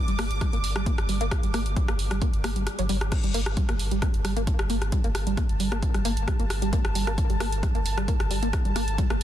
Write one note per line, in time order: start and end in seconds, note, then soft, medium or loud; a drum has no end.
0.00 2.90 D6 medium
0.08 0.18 G1 medium
0.08 0.16 G3 medium
0.08 closed hi-hat medium
0.19 0.30 G1 loud
0.19 0.24 A#3 loud
0.19 cross-stick loud
0.19 open hi-hat loud
0.30 0.41 G1 medium
0.30 closed hi-hat medium
0.41 0.50 G3 medium
0.41 kick loud
0.41 cross-stick medium
0.41 closed hi-hat medium
0.53 0.63 G1 medium
0.53 0.58 A#3 loud
0.53 closed hi-hat soft
0.64 0.75 G1 loud
0.64 open hi-hat loud
0.76 0.86 G1 medium
0.76 0.83 G3 medium
0.76 cross-stick loud
0.76 closed hi-hat soft
0.86 0.92 A#3 loud
0.86 kick loud
0.86 closed hi-hat medium
0.98 1.08 G1 medium
0.98 cross-stick medium
0.98 closed hi-hat soft
1.09 1.20 G1 loud
1.09 1.18 G3 medium
1.09 open hi-hat loud
1.21 1.31 G1 medium
1.21 1.26 A#3 loud
1.21 closed hi-hat soft
1.31 kick loud
1.31 cross-stick loud
1.31 closed hi-hat loud
1.43 1.53 G1 medium
1.43 1.51 G3 medium
1.43 closed hi-hat medium
1.54 1.65 G1 loud
1.54 1.60 A#3 loud
1.54 cross-stick medium
1.54 open hi-hat loud
1.66 1.76 G1 medium
1.66 closed hi-hat medium
1.76 1.85 G3 medium
1.76 kick loud
1.76 closed hi-hat medium
1.88 1.98 G1 medium
1.88 1.94 A#3 loud
1.88 cross-stick medium
1.88 closed hi-hat medium
1.99 2.10 G1 loud
1.99 open hi-hat loud
2.11 2.21 G1 medium
2.11 2.19 G3 medium
2.11 cross-stick medium
2.11 closed hi-hat medium
2.22 2.27 A#3 loud
2.22 kick loud
2.22 closed hi-hat medium
2.33 2.44 G1 medium
2.33 closed hi-hat medium
2.44 2.55 G1 loud
2.44 2.50 A#3 medium
2.44 cross-stick loud
2.44 open hi-hat loud
2.56 2.67 G1 medium
2.56 2.64 G3 medium
2.56 closed hi-hat medium
2.67 cross-stick medium
2.67 closed hi-hat medium
2.75 2.89 G1 medium
2.75 2.84 F#3 loud
2.75 9.23 A5 medium
2.75 closed hi-hat medium
2.89 3.01 G1 loud
2.89 2.95 G3 loud
2.89 open hi-hat loud
3.01 3.12 G1 medium
3.01 cross-stick medium
3.01 closed hi-hat medium
3.12 kick loud
3.12 cross-stick medium
3.12 closed hi-hat medium
3.12 crash medium
3.24 3.34 G1 medium
3.24 3.32 G3 medium
3.24 closed hi-hat medium
3.34 3.46 G1 loud
3.34 3.40 A#3 loud
3.34 open hi-hat loud
3.46 3.57 G1 medium
3.46 cross-stick medium
3.46 closed hi-hat medium
3.57 3.66 G3 medium
3.57 kick loud
3.57 closed hi-hat medium
3.69 3.79 G1 medium
3.69 3.74 A#3 loud
3.69 cross-stick medium
3.69 closed hi-hat medium
3.79 3.91 G1 loud
3.79 open hi-hat loud
3.91 4.02 G1 medium
3.91 3.99 G3 medium
3.91 closed hi-hat medium
4.02 4.08 A#3 loud
4.02 kick loud
4.02 cross-stick medium
4.02 closed hi-hat medium
4.14 4.24 G1 medium
4.14 closed hi-hat medium
4.25 4.36 G1 loud
4.25 4.33 G3 medium
4.25 cross-stick medium
4.25 open hi-hat loud
4.37 4.47 G1 medium
4.37 4.42 A#3 loud
4.37 closed hi-hat medium
4.47 kick loud
4.47 closed hi-hat medium
4.59 4.69 G1 medium
4.59 4.67 G3 medium
4.59 cross-stick loud
4.59 closed hi-hat medium
4.70 4.81 G1 loud
4.70 4.76 A#3 loud
4.70 open hi-hat loud
4.82 4.92 G1 medium
4.82 cross-stick medium
4.82 closed hi-hat medium
4.92 5.01 G3 medium
4.92 kick loud
4.92 closed hi-hat loud
5.04 5.14 G1 medium
5.04 5.09 A#3 loud
5.04 closed hi-hat medium
5.15 5.26 G1 loud
5.15 cross-stick medium
5.15 open hi-hat loud
5.27 5.37 G1 medium
5.27 5.35 G3 medium
5.27 closed hi-hat medium
5.37 5.43 A#3 loud
5.37 kick loud
5.37 cross-stick medium
5.37 closed hi-hat loud
5.49 5.59 G1 medium
5.49 closed hi-hat medium
5.60 5.71 G1 loud
5.60 5.69 G3 medium
5.60 open hi-hat loud
5.72 5.82 G1 medium
5.72 5.77 A#3 loud
5.72 cross-stick medium
5.72 closed hi-hat medium
5.82 kick loud
5.82 closed hi-hat loud
5.94 6.04 G1 medium
5.94 6.02 G3 medium
5.94 cross-stick medium
5.94 closed hi-hat medium
6.05 6.16 G1 loud
6.05 6.11 A#3 loud
6.05 open hi-hat loud
6.17 6.27 G1 medium
6.17 closed hi-hat medium
6.28 6.36 G3 medium
6.28 kick loud
6.28 cross-stick medium
6.28 closed hi-hat loud
6.39 6.50 G1 medium
6.39 6.45 A#3 loud
6.39 closed hi-hat medium
6.50 6.61 G1 loud
6.50 cross-stick medium
6.50 open hi-hat loud
6.62 6.72 G1 medium
6.62 6.70 G3 medium
6.62 closed hi-hat medium
6.73 6.79 A#3 loud
6.73 kick loud
6.73 closed hi-hat medium
6.85 6.95 G1 medium
6.85 cross-stick medium
6.85 closed hi-hat medium
6.95 7.07 G1 loud
6.95 7.04 G3 medium
6.95 open hi-hat loud
7.07 7.18 G1 medium
7.07 7.12 A#3 loud
7.07 cross-stick medium
7.07 closed hi-hat soft
7.18 kick loud
7.18 closed hi-hat loud
7.30 7.40 G1 medium
7.30 7.38 G3 medium
7.30 closed hi-hat medium
7.40 7.52 G1 loud
7.40 7.46 A#3 loud
7.40 cross-stick medium
7.40 open hi-hat loud
7.52 7.63 G1 medium
7.52 closed hi-hat medium
7.63 7.72 G3 medium
7.63 kick loud
7.63 cross-stick medium
7.63 closed hi-hat medium
7.75 7.85 G1 medium
7.75 7.80 A#3 loud
7.75 closed hi-hat medium
7.86 7.97 G1 loud
7.86 open hi-hat loud
7.98 8.08 G1 medium
7.98 8.05 G3 medium
7.98 cross-stick medium
7.98 closed hi-hat medium
8.08 8.14 A#3 loud
8.08 kick loud
8.08 closed hi-hat medium
8.20 8.30 G1 medium
8.20 cross-stick medium
8.20 closed hi-hat medium
8.31 8.42 G1 loud
8.31 8.39 G3 medium
8.31 open hi-hat loud
8.43 8.53 G1 medium
8.43 8.48 A#3 loud
8.43 closed hi-hat medium
8.53 kick loud
8.53 cross-stick medium
8.53 closed hi-hat medium
8.65 8.75 G1 medium
8.65 8.73 G3 medium
8.65 closed hi-hat medium
8.76 8.87 G1 loud
8.76 8.82 A#3 loud
8.76 cross-stick medium
8.76 open hi-hat loud
8.88 8.98 G1 medium
8.88 closed hi-hat medium
8.98 9.07 G3 medium
8.98 kick loud
8.98 closed hi-hat medium
9.10 9.20 G1 medium
9.10 9.15 A#3 loud
9.10 cross-stick medium
9.10 closed hi-hat medium